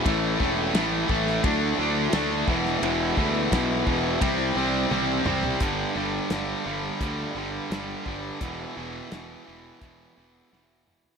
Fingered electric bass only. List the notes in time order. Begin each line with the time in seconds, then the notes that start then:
0.06 A1
0.40 E1
0.74 A1
1.09 A1
1.44 D2
1.78 D2
2.13 D2
2.48 E1
2.82 E1
3.17 D2
3.52 B1
3.87 E1
4.22 C2
4.55 C2
4.91 C2
5.25 C2
5.61 G1
5.95 G1
6.30 G1
6.66 G1
7.01 D2
7.35 G1
7.70 G1
8.07 G1
8.41 E1
8.77 E1
9.12 E1
9.48 E1
9.82 E1
10.17 E1
10.53 E1